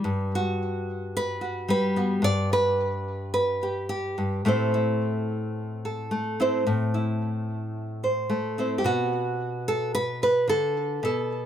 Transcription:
0, 0, Header, 1, 2, 480
1, 0, Start_track
1, 0, Key_signature, 1, "major"
1, 0, Tempo, 551471
1, 41, Time_signature, 4, 2, 24, 8
1, 5322, Tempo, 546448
1, 10015, End_track
2, 0, Start_track
2, 0, Title_t, "Nylon-string guitar"
2, 0, Program_c, 0, 24
2, 0, Note_on_c, 0, 55, 69
2, 36, Note_on_c, 0, 43, 74
2, 307, Note_on_c, 0, 66, 76
2, 333, Note_off_c, 0, 55, 0
2, 1015, Note_on_c, 0, 71, 106
2, 1218, Note_off_c, 0, 66, 0
2, 1229, Note_on_c, 0, 66, 49
2, 1466, Note_on_c, 0, 55, 72
2, 1472, Note_off_c, 0, 71, 0
2, 1482, Note_on_c, 0, 71, 97
2, 1705, Note_off_c, 0, 66, 0
2, 1709, Note_on_c, 0, 59, 49
2, 1716, Note_on_c, 0, 66, 48
2, 1917, Note_off_c, 0, 55, 0
2, 1919, Note_off_c, 0, 59, 0
2, 1921, Note_off_c, 0, 43, 0
2, 1923, Note_off_c, 0, 66, 0
2, 1932, Note_on_c, 0, 43, 77
2, 1949, Note_off_c, 0, 71, 0
2, 1952, Note_on_c, 0, 74, 122
2, 2190, Note_off_c, 0, 74, 0
2, 2201, Note_on_c, 0, 71, 101
2, 2894, Note_off_c, 0, 71, 0
2, 2905, Note_on_c, 0, 71, 97
2, 3158, Note_on_c, 0, 67, 51
2, 3377, Note_off_c, 0, 67, 0
2, 3384, Note_off_c, 0, 71, 0
2, 3388, Note_on_c, 0, 67, 75
2, 3627, Note_off_c, 0, 43, 0
2, 3636, Note_on_c, 0, 43, 62
2, 3869, Note_off_c, 0, 43, 0
2, 3873, Note_off_c, 0, 67, 0
2, 3873, Note_on_c, 0, 45, 77
2, 3881, Note_on_c, 0, 57, 63
2, 3885, Note_on_c, 0, 60, 61
2, 3890, Note_on_c, 0, 64, 62
2, 3901, Note_on_c, 0, 72, 62
2, 4122, Note_off_c, 0, 64, 0
2, 4126, Note_on_c, 0, 64, 54
2, 5088, Note_off_c, 0, 72, 0
2, 5092, Note_on_c, 0, 69, 59
2, 5315, Note_off_c, 0, 57, 0
2, 5319, Note_on_c, 0, 57, 67
2, 5560, Note_off_c, 0, 60, 0
2, 5565, Note_off_c, 0, 64, 0
2, 5571, Note_on_c, 0, 60, 63
2, 5575, Note_on_c, 0, 64, 64
2, 5582, Note_off_c, 0, 69, 0
2, 5586, Note_on_c, 0, 72, 72
2, 5772, Note_off_c, 0, 45, 0
2, 5778, Note_off_c, 0, 60, 0
2, 5780, Note_off_c, 0, 64, 0
2, 5785, Note_off_c, 0, 72, 0
2, 5806, Note_on_c, 0, 45, 79
2, 6049, Note_on_c, 0, 64, 47
2, 7010, Note_on_c, 0, 72, 51
2, 7234, Note_off_c, 0, 57, 0
2, 7237, Note_on_c, 0, 57, 64
2, 7484, Note_off_c, 0, 64, 0
2, 7485, Note_off_c, 0, 72, 0
2, 7489, Note_on_c, 0, 60, 49
2, 7495, Note_on_c, 0, 64, 49
2, 7502, Note_on_c, 0, 72, 50
2, 7662, Note_off_c, 0, 72, 0
2, 7666, Note_on_c, 0, 67, 68
2, 7692, Note_off_c, 0, 57, 0
2, 7693, Note_off_c, 0, 45, 0
2, 7696, Note_off_c, 0, 60, 0
2, 7699, Note_off_c, 0, 64, 0
2, 7719, Note_on_c, 0, 47, 80
2, 7724, Note_off_c, 0, 67, 0
2, 7729, Note_on_c, 0, 66, 99
2, 8454, Note_on_c, 0, 69, 95
2, 8684, Note_off_c, 0, 69, 0
2, 8688, Note_on_c, 0, 71, 112
2, 8921, Note_off_c, 0, 66, 0
2, 8922, Note_off_c, 0, 71, 0
2, 8937, Note_on_c, 0, 71, 97
2, 9152, Note_on_c, 0, 50, 65
2, 9156, Note_off_c, 0, 47, 0
2, 9165, Note_off_c, 0, 71, 0
2, 9169, Note_on_c, 0, 69, 100
2, 9606, Note_off_c, 0, 50, 0
2, 9639, Note_on_c, 0, 47, 80
2, 9644, Note_off_c, 0, 69, 0
2, 9655, Note_on_c, 0, 69, 88
2, 10015, Note_off_c, 0, 47, 0
2, 10015, Note_off_c, 0, 69, 0
2, 10015, End_track
0, 0, End_of_file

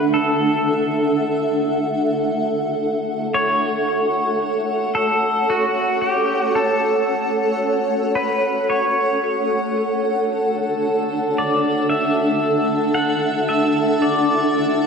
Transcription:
0, 0, Header, 1, 4, 480
1, 0, Start_track
1, 0, Key_signature, 2, "major"
1, 0, Tempo, 1071429
1, 50, Time_signature, 3, 2, 24, 8
1, 6660, End_track
2, 0, Start_track
2, 0, Title_t, "Synth texture"
2, 0, Program_c, 0, 99
2, 4360, Note_on_c, 0, 69, 78
2, 4365, Note_on_c, 0, 81, 75
2, 6660, Note_off_c, 0, 69, 0
2, 6660, Note_off_c, 0, 81, 0
2, 6660, End_track
3, 0, Start_track
3, 0, Title_t, "Ambient pad"
3, 0, Program_c, 1, 92
3, 0, Note_on_c, 1, 62, 71
3, 0, Note_on_c, 1, 69, 67
3, 0, Note_on_c, 1, 76, 75
3, 0, Note_on_c, 1, 78, 85
3, 1487, Note_off_c, 1, 62, 0
3, 1796, Note_on_c, 1, 73, 73
3, 2407, Note_off_c, 1, 76, 0
3, 4365, Note_on_c, 1, 62, 90
3, 5040, Note_off_c, 1, 73, 0
3, 5148, Note_on_c, 1, 76, 88
3, 6660, Note_off_c, 1, 62, 0
3, 6660, Note_off_c, 1, 69, 0
3, 6660, Note_off_c, 1, 76, 0
3, 6660, Note_off_c, 1, 78, 0
3, 6660, End_track
4, 0, Start_track
4, 0, Title_t, "Pedal steel guitar"
4, 0, Program_c, 2, 26
4, 0, Note_on_c, 2, 71, 94
4, 62, Note_on_c, 2, 69, 79
4, 69, Note_off_c, 2, 71, 0
4, 758, Note_off_c, 2, 69, 0
4, 1498, Note_on_c, 2, 73, 105
4, 2196, Note_off_c, 2, 73, 0
4, 2217, Note_on_c, 2, 69, 86
4, 2461, Note_off_c, 2, 69, 0
4, 2463, Note_on_c, 2, 66, 87
4, 2695, Note_on_c, 2, 67, 77
4, 2704, Note_off_c, 2, 66, 0
4, 2874, Note_off_c, 2, 67, 0
4, 2874, Note_on_c, 2, 66, 77
4, 2934, Note_off_c, 2, 66, 0
4, 2936, Note_on_c, 2, 69, 92
4, 3651, Note_off_c, 2, 69, 0
4, 3653, Note_on_c, 2, 71, 86
4, 3896, Note_on_c, 2, 73, 78
4, 3899, Note_off_c, 2, 71, 0
4, 4235, Note_off_c, 2, 73, 0
4, 5100, Note_on_c, 2, 74, 76
4, 5327, Note_off_c, 2, 74, 0
4, 5329, Note_on_c, 2, 76, 84
4, 5797, Note_off_c, 2, 76, 0
4, 5799, Note_on_c, 2, 78, 98
4, 6027, Note_off_c, 2, 78, 0
4, 6042, Note_on_c, 2, 76, 84
4, 6281, Note_on_c, 2, 74, 69
4, 6293, Note_off_c, 2, 76, 0
4, 6660, Note_off_c, 2, 74, 0
4, 6660, End_track
0, 0, End_of_file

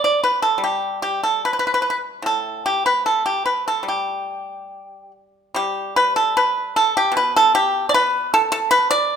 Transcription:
0, 0, Header, 1, 2, 480
1, 0, Start_track
1, 0, Tempo, 808625
1, 364, Time_signature, 2, 2, 24, 8
1, 2291, Tempo, 847458
1, 3251, Tempo, 792602
1, 5437, End_track
2, 0, Start_track
2, 0, Title_t, "Pipa"
2, 0, Program_c, 0, 105
2, 0, Note_on_c, 0, 47, 36
2, 25, Note_on_c, 0, 74, 66
2, 129, Note_off_c, 0, 74, 0
2, 140, Note_on_c, 0, 71, 62
2, 245, Note_off_c, 0, 71, 0
2, 252, Note_on_c, 0, 69, 62
2, 344, Note_on_c, 0, 55, 42
2, 359, Note_off_c, 0, 69, 0
2, 378, Note_on_c, 0, 67, 59
2, 590, Note_off_c, 0, 67, 0
2, 608, Note_on_c, 0, 67, 67
2, 715, Note_off_c, 0, 67, 0
2, 733, Note_on_c, 0, 69, 62
2, 833, Note_off_c, 0, 47, 0
2, 838, Note_off_c, 0, 69, 0
2, 861, Note_on_c, 0, 71, 65
2, 892, Note_off_c, 0, 71, 0
2, 909, Note_on_c, 0, 71, 46
2, 938, Note_off_c, 0, 71, 0
2, 945, Note_on_c, 0, 71, 55
2, 979, Note_off_c, 0, 71, 0
2, 991, Note_on_c, 0, 71, 47
2, 1024, Note_off_c, 0, 71, 0
2, 1033, Note_on_c, 0, 71, 55
2, 1068, Note_off_c, 0, 71, 0
2, 1080, Note_on_c, 0, 71, 46
2, 1114, Note_off_c, 0, 71, 0
2, 1128, Note_on_c, 0, 71, 52
2, 1160, Note_off_c, 0, 71, 0
2, 1320, Note_on_c, 0, 45, 48
2, 1342, Note_on_c, 0, 69, 62
2, 1560, Note_off_c, 0, 69, 0
2, 1577, Note_on_c, 0, 67, 63
2, 1684, Note_off_c, 0, 67, 0
2, 1697, Note_on_c, 0, 71, 64
2, 1795, Note_off_c, 0, 55, 0
2, 1803, Note_off_c, 0, 71, 0
2, 1816, Note_on_c, 0, 69, 57
2, 1922, Note_off_c, 0, 69, 0
2, 1933, Note_on_c, 0, 67, 52
2, 2041, Note_off_c, 0, 67, 0
2, 2051, Note_on_c, 0, 71, 56
2, 2162, Note_off_c, 0, 71, 0
2, 2182, Note_on_c, 0, 69, 58
2, 2273, Note_on_c, 0, 55, 38
2, 2290, Note_off_c, 0, 69, 0
2, 2305, Note_on_c, 0, 67, 46
2, 2771, Note_off_c, 0, 45, 0
2, 2999, Note_off_c, 0, 67, 0
2, 3239, Note_off_c, 0, 55, 0
2, 3246, Note_on_c, 0, 55, 52
2, 3254, Note_on_c, 0, 67, 69
2, 3482, Note_off_c, 0, 67, 0
2, 3499, Note_on_c, 0, 71, 80
2, 3611, Note_off_c, 0, 71, 0
2, 3618, Note_on_c, 0, 69, 73
2, 3729, Note_off_c, 0, 69, 0
2, 3744, Note_on_c, 0, 71, 77
2, 3962, Note_off_c, 0, 71, 0
2, 3983, Note_on_c, 0, 69, 73
2, 4091, Note_off_c, 0, 69, 0
2, 4107, Note_on_c, 0, 67, 74
2, 4197, Note_on_c, 0, 47, 56
2, 4214, Note_off_c, 0, 67, 0
2, 4228, Note_on_c, 0, 71, 78
2, 4334, Note_off_c, 0, 71, 0
2, 4347, Note_on_c, 0, 69, 85
2, 4454, Note_off_c, 0, 69, 0
2, 4458, Note_on_c, 0, 67, 78
2, 4640, Note_off_c, 0, 67, 0
2, 4667, Note_on_c, 0, 74, 73
2, 4691, Note_off_c, 0, 55, 0
2, 4696, Note_off_c, 0, 74, 0
2, 4698, Note_on_c, 0, 71, 87
2, 4917, Note_off_c, 0, 71, 0
2, 4936, Note_on_c, 0, 69, 90
2, 5039, Note_off_c, 0, 69, 0
2, 5046, Note_on_c, 0, 69, 90
2, 5160, Note_off_c, 0, 69, 0
2, 5161, Note_on_c, 0, 71, 90
2, 5278, Note_off_c, 0, 71, 0
2, 5280, Note_on_c, 0, 74, 98
2, 5437, Note_off_c, 0, 47, 0
2, 5437, Note_off_c, 0, 74, 0
2, 5437, End_track
0, 0, End_of_file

